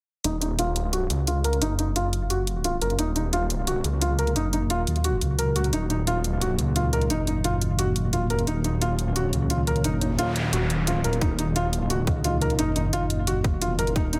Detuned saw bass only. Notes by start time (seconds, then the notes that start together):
0.24 D#1
1.10 C#2
1.61 F#1
1.96 F#1
2.81 F#1
2.99 D#1
3.84 C#2
4.36 F#1
4.70 D#1
4.87 D#2
5.21 C#2
5.73 D#1
6.59 C#2
7.10 F#1
7.44 F#1
8.04 F1
8.30 F#1
8.47 D#1
9.33 C#2
9.84 F#1
10.53 D#1
11.04 D#1
11.21 D#1
12.07 C#2
12.59 F#1
12.93 F#1
13.53 F1
13.79 F#1
13.96 D#1